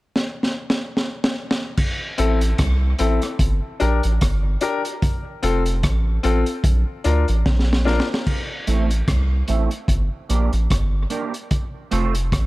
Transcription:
0.16 snare
0.43 snare
0.70 snare
0.97 snare
1.24 snare
1.51 snare
1.77 kick, crash
2.18 sub bass A1, grand piano C4 E4 A4, closed hi-hat
2.41 closed hi-hat
2.58 sub bass C2, kick, cross-stick, closed hi-hat
2.99 sub bass A1, grand piano C4 E4 A4, closed hi-hat
3.22 cross-stick, closed hi-hat
3.39 sub bass G1, kick, closed hi-hat
3.80 sub bass A#1, grand piano D4 G4 A#4, closed hi-hat
4.03 sub bass A1, closed hi-hat
4.21 sub bass G1, kick, cross-stick, closed hi-hat
4.61 grand piano D4 G4 A#4, closed hi-hat
4.85 grand piano G4 A#4, closed hi-hat
5.02 kick, closed hi-hat
5.42 sub bass F1, grand piano C4 F4 A4, closed hi-hat
5.66 closed hi-hat
5.83 sub bass A1, kick, cross-stick, closed hi-hat
6.23 sub bass A1, grand piano C4 F4 A4, closed hi-hat
6.46 closed hi-hat
6.64 sub bass A#1, kick, closed hi-hat
7.04 sub bass D2, grand piano D4 F4 A#4, closed hi-hat
7.28 sub bass A1, closed hi-hat
7.46 sub bass A#1, kick, snare
7.59 snare
7.73 snare
7.85 grand piano D4 F4 A#4, snare
8.00 snare
8.10 grand piano F4 A#4
8.14 snare
8.27 kick, crash
8.67 sub bass A1, clean electric guitar A3 C4 E4 A4, closed hi-hat
8.90 closed hi-hat
9.08 sub bass C2, kick, cross-stick, closed hi-hat
9.48 sub bass A1, clean electric guitar A3 C4 E4 A4, closed hi-hat
9.71 muted clean electric guitar stroke, closed hi-hat
9.88 sub bass G1, kick, closed hi-hat
10.29 sub bass A#1, clean electric guitar A#3 D4 G4 A#4, closed hi-hat
10.53 sub bass A1, muted clean electric guitar stroke, closed hi-hat
10.70 sub bass G1, kick, cross-stick, closed hi-hat
11.10 clean electric guitar A#3 D4 G4 A#4, closed hi-hat
11.34 closed hi-hat
11.51 kick, closed hi-hat
11.91 sub bass F1, clean electric guitar A3 C4 F4 A4, closed hi-hat
12.15 closed hi-hat
12.32 sub bass A1, kick, cross-stick, closed hi-hat

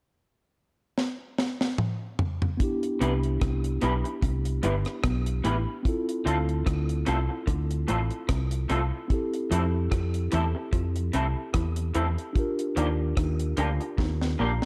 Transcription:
0.98 snare
1.38 snare
1.61 snare
1.78 mid tom
2.19 floor tom
2.42 floor tom
2.57 tine electric piano B3 D4, kick, closed hi-hat
2.62 tine electric piano E4 G4
2.83 closed hi-hat
3.01 fingered electric bass C2, clean electric guitar C3 B3 E4 G4 B4, closed hi-hat
3.23 closed hi-hat
3.41 fingered electric bass C2, clean electric guitar C3, kick, cross-stick, closed hi-hat
3.64 closed hi-hat
3.81 fingered electric bass B1, clean electric guitar B2 B3 E4 G4 B4, closed hi-hat
4.04 muted clean electric guitar stroke, closed hi-hat
4.22 fingered electric bass C2, clean electric guitar C3, kick, closed hi-hat
4.45 closed hi-hat
4.63 fingered electric bass G1, clean electric guitar G2 B3 E4 G4 B4, closed hi-hat
4.85 cross-stick, closed hi-hat
5.04 fingered electric bass B1, clean electric guitar B2, kick, cross-stick, closed hi-hat
5.26 closed hi-hat
5.44 fingered electric bass A1, clean electric guitar A2 B3 E4 G4 B4, closed hi-hat
5.83 tine electric piano C4 E4, kick, closed hi-hat
5.87 tine electric piano F4 A4
6.09 closed hi-hat
6.25 fingered electric bass D2, clean electric guitar D3 A3 C4 F4 A4, closed hi-hat
6.49 closed hi-hat
6.66 fingered electric bass D2, clean electric guitar D3, kick, cross-stick, closed hi-hat
6.89 closed hi-hat
7.06 fingered electric bass C2, clean electric guitar C3 A3 C4 F4 A4, closed hi-hat
7.29 muted clean electric guitar stroke
7.47 fingered electric bass D2, clean electric guitar D3, kick, closed hi-hat
7.71 closed hi-hat
7.88 fingered electric bass A1, clean electric guitar A2 A3 C4 F4 A4, closed hi-hat
8.11 closed hi-hat
8.29 fingered electric bass C2, clean electric guitar C3, kick, cross-stick, closed hi-hat
8.51 closed hi-hat
8.69 fingered electric bass C2, clean electric guitar C3 A3 C4 F4 A4, closed hi-hat
9.08 tine electric piano C4 E4 G4, kick, closed hi-hat
9.14 tine electric piano A4
9.34 closed hi-hat
9.51 fingered electric bass F2, clean electric guitar F3 A3 C4 E4 A4, closed hi-hat
9.91 fingered electric bass F2, clean electric guitar F3, kick, cross-stick, closed hi-hat
10.14 closed hi-hat
10.32 fingered electric bass E2, clean electric guitar E3 A3 C4 E4 A4, closed hi-hat
10.55 muted clean electric guitar stroke
10.73 fingered electric bass F2, clean electric guitar F3, kick, closed hi-hat
10.96 closed hi-hat
11.13 fingered electric bass C2, clean electric guitar C3 A3 C4 E4 A4, closed hi-hat
11.54 fingered electric bass E2, clean electric guitar E3, kick, cross-stick, closed hi-hat
11.76 closed hi-hat
11.95 fingered electric bass E2, clean electric guitar E3 A3 C4 E4 A4, closed hi-hat
12.18 closed hi-hat
12.33 tine electric piano D4 F4, kick, closed hi-hat
12.37 tine electric piano G4 A#4
12.59 closed hi-hat
12.76 fingered electric bass D#2, clean electric guitar D#3 F3 A#3 D4 G4, closed hi-hat
13.17 fingered electric bass D#2, clean electric guitar D#3, kick, cross-stick, closed hi-hat
13.39 closed hi-hat
13.57 fingered electric bass D2, clean electric guitar D3 F3 A#3 D4 G4, closed hi-hat
13.80 muted clean electric guitar stroke, closed hi-hat
13.98 fingered electric bass D#2, clean electric guitar D#3, kick, snare
14.21 snare
14.39 fingered electric bass A#1, clean electric guitar A#2 F3 A#3 D4 G4, tine electric piano A#5

